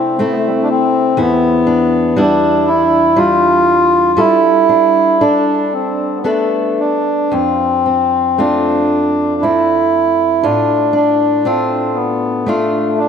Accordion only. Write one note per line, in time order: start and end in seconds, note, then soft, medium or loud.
0.00 0.20 C4 medium
0.19 0.31 A3 medium
0.31 0.35 B3 medium
0.38 0.49 A3 medium
0.47 0.51 G3 soft
0.54 0.70 A3 medium
0.63 0.69 D4 soft
0.70 1.20 C4 medium
1.21 2.22 B3 medium
2.19 2.69 D4 medium
2.67 3.19 E4 medium
3.18 4.21 F4 medium
4.19 5.23 E4 medium
5.21 5.74 D4 medium
5.73 6.20 C4 medium
6.16 6.24 B3 soft
6.26 6.81 A3 medium
6.79 7.33 D4 medium
7.32 8.40 C4 medium
8.39 9.44 D4 medium
9.42 10.46 E4 medium
10.43 10.94 D4 medium
10.96 11.47 D4 medium
11.45 11.97 C4 medium
11.95 12.48 B3 medium
12.47 12.99 A3 medium
12.98 13.08 D4 medium